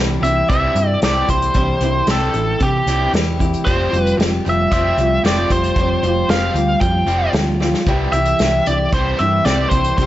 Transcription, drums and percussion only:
0.24 closed hi-hat medium
0.50 kick loud
0.50 closed hi-hat medium
0.76 closed hi-hat medium
1.02 snare loud
1.02 closed hi-hat medium
1.29 kick medium
1.29 closed hi-hat medium
1.42 closed hi-hat medium
1.54 kick medium
1.54 closed hi-hat medium
1.81 closed hi-hat medium
2.07 snare loud
2.07 closed hi-hat medium
2.34 closed hi-hat medium
2.60 kick loud
2.60 closed hi-hat medium
2.87 closed hi-hat medium
3.14 snare loud
3.14 closed hi-hat medium
3.40 kick medium
3.40 closed hi-hat medium
3.53 closed hi-hat medium
3.67 kick loud
3.67 closed hi-hat medium
3.93 closed hi-hat soft
4.07 closed hi-hat medium
4.20 snare loud
4.20 closed hi-hat medium
4.46 closed hi-hat medium
4.72 kick loud
4.72 closed hi-hat medium
4.98 closed hi-hat medium
5.25 snare loud
5.25 closed hi-hat medium
5.50 kick medium
5.50 closed hi-hat medium
5.64 closed hi-hat medium
5.76 kick loud
5.76 closed hi-hat medium
6.03 closed hi-hat medium
6.29 snare loud
6.29 closed hi-hat medium
6.56 closed hi-hat medium
6.81 kick loud
6.81 closed hi-hat medium
7.08 closed hi-hat medium
7.33 snare loud
7.33 closed hi-hat medium
7.61 snare medium
7.74 snare medium
7.86 kick loud
7.86 closed hi-hat medium
8.13 closed hi-hat medium
8.25 closed hi-hat medium
8.39 snare loud
8.39 closed hi-hat medium
8.66 closed hi-hat medium
8.92 kick loud
8.92 closed hi-hat medium
9.19 closed hi-hat medium
9.45 snare loud
9.45 closed hi-hat medium
9.71 kick medium
9.71 closed hi-hat medium
9.84 closed hi-hat medium
9.98 kick loud
9.98 closed hi-hat medium

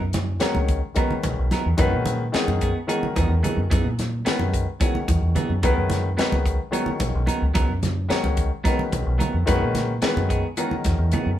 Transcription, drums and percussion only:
0.13 snare soft
0.13 closed hi-hat medium
0.13 high conga medium
0.13 low conga medium
0.40 snare medium
0.40 closed hi-hat medium
0.55 muted conga medium
0.55 high conga medium
0.55 low conga medium
0.68 kick medium
0.68 closed hi-hat medium
0.96 kick medium
0.96 closed hi-hat medium
1.11 high conga medium
1.11 low conga medium
1.24 kick medium
1.24 closed hi-hat medium
1.24 muted conga medium
1.24 low conga soft
1.51 snare soft
1.51 closed hi-hat medium
1.51 high conga medium
1.78 kick loud
1.78 closed hi-hat medium
1.78 muted conga medium
2.06 closed hi-hat medium
2.06 high conga medium
2.06 low conga medium
2.34 snare loud
2.34 closed hi-hat medium
2.48 muted conga medium
2.48 high conga medium
2.61 kick medium
2.61 closed hi-hat medium
2.89 closed hi-hat medium
3.03 high conga medium
3.03 low conga medium
3.16 kick medium
3.16 closed hi-hat medium
3.16 muted conga medium
3.16 low conga soft
3.44 closed hi-hat medium
3.44 high conga medium
3.44 low conga medium
3.71 kick loud
3.71 closed hi-hat medium
3.71 muted conga medium
3.71 low conga soft
3.99 snare soft
3.99 closed hi-hat medium
3.99 high conga medium
4.13 low conga soft
4.26 snare medium
4.26 closed hi-hat medium
4.39 muted conga medium
4.39 high conga medium
4.39 low conga medium
4.53 kick medium
4.53 closed hi-hat medium
4.53 low conga soft
4.81 kick loud
4.81 closed hi-hat medium
4.95 high conga medium
4.95 low conga medium
5.08 kick medium
5.08 closed hi-hat medium
5.08 muted conga medium
5.08 low conga soft
5.22 low conga soft
5.36 closed hi-hat medium
5.36 high conga medium
5.36 low conga medium
5.50 low conga soft
5.63 kick loud
5.63 closed hi-hat medium
5.63 muted conga medium
5.90 snare soft
5.90 closed hi-hat medium
5.90 high conga medium
5.90 low conga medium
6.18 snare loud
6.18 closed hi-hat medium
6.32 muted conga medium
6.32 high conga medium
6.32 low conga medium
6.46 kick medium
6.46 closed hi-hat medium
6.73 closed hi-hat medium
6.86 high conga medium
6.86 low conga medium
7.00 kick medium
7.00 closed hi-hat medium
7.00 muted conga medium
7.00 low conga soft
7.27 closed hi-hat medium
7.27 high conga medium
7.55 kick loud
7.55 closed hi-hat medium
7.55 muted conga medium
7.83 snare soft
7.83 closed hi-hat medium
7.83 high conga medium
7.83 low conga medium
8.10 snare medium
8.10 closed hi-hat medium
8.24 muted conga medium
8.24 high conga medium
8.24 low conga medium
8.37 kick medium
8.37 closed hi-hat medium
8.65 kick loud
8.65 snare soft
8.65 closed hi-hat medium
8.79 high conga medium
8.79 low conga medium
8.92 kick medium
8.92 closed hi-hat medium
8.92 muted conga medium
8.92 low conga soft
9.20 closed hi-hat medium
9.20 high conga medium
9.20 low conga medium
9.47 kick loud
9.47 closed hi-hat medium
9.47 muted conga medium
9.75 snare soft
9.75 closed hi-hat medium
9.75 high conga medium
9.75 low conga medium
10.02 snare loud
10.02 closed hi-hat medium
10.17 muted conga medium
10.17 high conga medium
10.17 low conga medium
10.30 kick medium
10.30 closed hi-hat medium
10.57 closed hi-hat medium
10.71 high conga medium
10.71 low conga medium
10.84 kick medium
10.84 snare soft
10.84 closed hi-hat medium
10.84 muted conga medium
10.84 low conga soft
11.12 closed hi-hat medium
11.12 high conga medium
11.12 low conga medium

